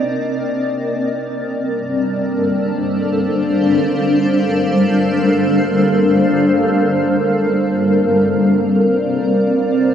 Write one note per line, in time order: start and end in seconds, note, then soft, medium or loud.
0.00 3.44 C4 medium
0.00 9.95 A#4 medium
0.00 3.03 D5 medium
0.00 1.28 D#5 medium
1.28 7.59 G3 medium
1.47 7.59 D4 medium
1.68 7.60 A4 medium
2.26 9.84 C5 medium
2.49 9.95 F5 medium
7.58 9.95 C4 medium
8.31 9.95 D5 medium
9.25 9.95 D#5 medium